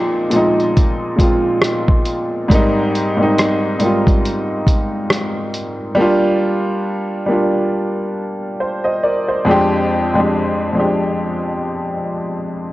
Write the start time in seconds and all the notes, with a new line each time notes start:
Already playing: A#2 F3 G#3 C4 D#4
0.30 A#2 F3 G#3, closed hi-hat
0.34 C4 D#4
0.60 closed hi-hat
0.77 kick, closed hi-hat
1.16 A#2 F3 G#3, kick, closed hi-hat
1.21 C4 F4
1.62 cross-stick, closed hi-hat
1.88 kick
2.05 closed hi-hat
2.48 G#2 G3 A#3, kick, closed hi-hat
2.53 C4 D#4
2.95 closed hi-hat
3.17 G#2 G3 A#3
3.21 C4 D#4
3.38 cross-stick, closed hi-hat
3.79 G#2 G3 A#3, closed hi-hat
3.83 C4 F4
4.07 kick, closed hi-hat
4.25 closed hi-hat
4.67 kick, closed hi-hat
5.10 cross-stick, closed hi-hat
5.54 closed hi-hat
5.95 G3 A#3 D4
6.01 F4
7.26 G3 A#3 D4
7.32 F4
8.60 C5
8.84 C5 D#5
9.04 A#4 D5
9.29 C5
9.45 F2 G#3 C4
9.50 D4 G4
10.14 F2 G#3 C4
10.18 D4 G4
10.73 F2 G#3 C4
10.78 D4 G4